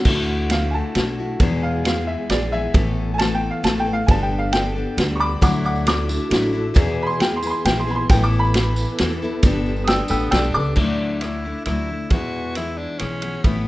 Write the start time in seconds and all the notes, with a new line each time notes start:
0.05 D2 D3 A3 D4 E4 F#4, kick, crash
0.50 D3 A3 E4 F5, snare, ride
0.54 F#4
0.70 F#4 G#5 A5
0.75 A3 E4
0.95 B1 D3 A3 E4 F#4, snare, ride
1.19 A3 E4 F#4
1.40 E2 B2 E3 G#3 B3 E4 G#4, kick, ride
1.63 F5
1.84 E3 G#3 B3 G#4 F5, snare, ride
2.07 E5
2.30 A#1 E3 G#3 B3 G#4 D5, snare, ride
2.52 E3 G#3 B3 G#4 E5
2.74 A1 A2 E3 A3 B3 E4 A4, kick, ride
3.14 G#5
3.18 E3 A3 B3 A4 A5, snare, ride
3.35 G5
3.51 F5
3.63 A1 E3 A3 B3 A4 A5, snare, ride
3.80 G5
3.85 A3 B3 A4
3.93 F5
4.06 G1 G3 B3 D4 A4 G#5, kick, ride
4.11 B3 D4 G4 A5
4.23 G5
4.39 F5
4.52 G3 B3 D4 A4 G5, snare, ride
4.75 B3 D4 A4
4.97 D2 G3 B3 D4 A4, snare, ride
5.16 C#6
5.20 B5 D6
5.41 D2 D3 F#3 A3 D4 E4 F#4 A4 F#5 D6, kick, ride, tambourine
5.53 tambourine
5.64 F#5 D6, tambourine
5.75 tambourine
5.86 F#3 A3 D4 E4 D6, snare, ride
6.08 A3 D4 E4, tambourine
6.20 tambourine
6.30 A1 F#3 A3 D4 E4, snare, ride, tambourine
6.42 tambourine
6.52 A3 D4 E4, tambourine
6.74 E2 B2 E3 B3 E4 G#4 B4, kick, ride, tambourine
6.87 tambourine
7.03 B5
7.07 C6, tambourine
7.19 E3 B3 E4 G#4 G5, snare, ride
7.36 C6
7.42 E3 B3 E4 G#4 B5, tambourine
7.50 C6, tambourine
7.65 A#1 E3 B3 E4 G#4 G5, snare, ride, tambourine
7.76 C6, tambourine
7.86 E3 B3 E4 G#4, tambourine
7.91 B5
7.95 C6
8.09 A1 A2 E3 B3 E4 A4 B4 G5, kick, ride, tambourine
8.22 D6, tambourine
8.33 tambourine
8.39 B5
8.45 tambourine
8.54 E3 B3 E4, snare, ride
8.58 A4
8.76 tambourine
8.89 tambourine
8.98 E2 E3 B3 E4 A4, snare, ride, tambourine
9.11 tambourine
9.22 B3 E4 A4, tambourine
9.43 G1 G3 B3 D4 A4, kick, ride, tambourine
9.47 G4 A4 B4
9.66 tambourine
9.77 tambourine
9.84 G5 D#6 E6, ride
9.89 G3 B3 D4 A4, snare
10.08 A1 B3 D4 A4 G5 E6, tambourine
10.13 B3
10.20 tambourine
10.31 B1 G3 B3 D4 G5 E6, snare, ride
10.35 D4 A4
10.54 C#2 D4 A4 D6
10.59 B3
10.75 D2 D3 F#3 A3 D4, kick, crash
10.80 D4 E4
11.21 F#3 A3 D4 E4, cross-stick, ride
11.45 A3 D4 E4
11.65 D2 F#3 A3 D4 E4, cross-stick, ride
11.70 E4
11.90 A3 D4 E4
12.10 E2 B2 E3 G#3 B3 E4 F#4, kick, ride
12.55 E3 G#3 B3 E4, cross-stick, ride
12.59 E4
12.78 D4
12.99 B1 E3 G#3 B3 C#4 E4, cross-stick, ride
13.22 E3 G#3 B3 E4, ride
13.44 A1 A2 E3 A3 B3 E4, kick, ride